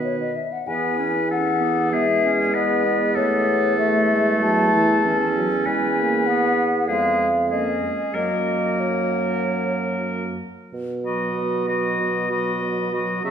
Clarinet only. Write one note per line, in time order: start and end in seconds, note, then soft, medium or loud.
0.00 0.33 B3 soft
0.67 0.97 B3 soft
0.99 1.13 C#4 soft
1.30 1.62 C#4 soft
1.61 1.91 B3 soft
1.92 2.06 B3 soft
2.23 2.53 C#4 soft
2.53 2.84 B3 soft
2.85 3.80 B3 soft
3.78 5.06 A3 soft
5.05 6.27 C#4 soft
6.28 6.88 B3 soft
6.89 7.28 G#3 soft
7.52 8.11 C#4 soft
8.16 10.38 A#3 soft
11.05 11.66 F#4 soft
11.68 12.29 F#4 soft
12.30 12.91 F#4 soft
12.92 13.23 F#4 soft
13.24 13.31 F#4 soft